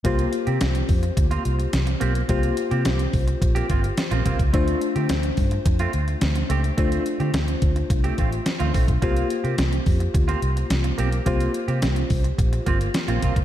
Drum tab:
HH |xxxxxxoxxxxxxxxx|xxxxxxoxxxxxxxxx|xxxxxxoxxxxxxxxx|xxxxxxxxxxxxxxox|
SD |----o-------o---|----o-------o---|----o-------o---|----o-------o---|
BD |o-----o-o-------|o-----o-o-o---oo|o-----o-o-------|o-----o-o-o---oo|

HH |xxxxxxoxxxxxxxxx|xxxxxxoxxxxxxxxx|
SD |----o-------o---|----o-------o---|
BD |o-----o-o-------|o-----o-o-o---oo|